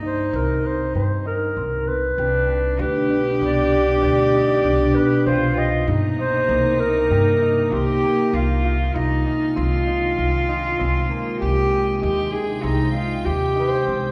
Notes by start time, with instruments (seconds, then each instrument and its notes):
Already playing: upright bass G2, harp A#3 C4 G4, cello D#4
0.02 harp D#4
0.06 clarinet C5
0.33 upright bass C2, harp C4, clarinet A#4
0.64 harp D#4, clarinet C5
0.95 upright bass G2, harp G4, clarinet C5
1.25 harp D#4, clarinet A#4
1.57 upright bass C2, harp C4
1.88 harp C4, clarinet B4
2.18 upright bass C2, ambient pad B2 B3 G4, cello D4, harp G4
2.49 harp G4
2.79 upright bass D2, harp D4, cello G4, clarinet B4
3.10 harp D4
3.41 upright bass C2, harp B3, clarinet D5
3.72 harp D4
4.02 upright bass D2, harp G4, clarinet D5
4.34 harp D#4
4.64 upright bass C2, harp D4
4.95 harp B3, clarinet B4
5.25 upright bass C2, ambient pad C3 A#3 D#4, cello F4, harp G4, clarinet C5
5.57 harp G4, clarinet D#5
5.88 upright bass G2, harp D#4, cello D#4
6.19 harp D#4, clarinet C5
6.49 upright bass C2, harp A#3
6.80 harp D#4, clarinet A#4
7.11 upright bass G2, harp G4
7.42 harp D#4
7.72 upright bass C2, harp C4, cello G4
8.03 harp A#3
8.33 upright bass C2, ambient pad D#3 G#3 F4, harp F4, cello F4
8.64 harp F4
8.95 upright bass C2, harp D#4, cello D#4
9.26 harp D#4
9.56 upright bass C2, harp C4, cello F4
9.87 harp D#4
10.17 upright bass C2, harp F4
10.49 harp D#4
10.79 upright bass C2, harp C4
11.10 harp A#3
11.40 upright bass C2, ambient pad C3 G5, harp G4, cello G4
11.72 harp G4
12.02 upright bass D#2, harp D#4, cello G4
12.33 harp D#4, cello G#4
12.63 upright bass C2, harp C4, cello D#4
12.94 harp D#4, cello F4
13.25 upright bass D#2, cello G4, harp G4
13.56 harp D#4
13.60 clarinet C5
13.86 upright bass C2, harp C4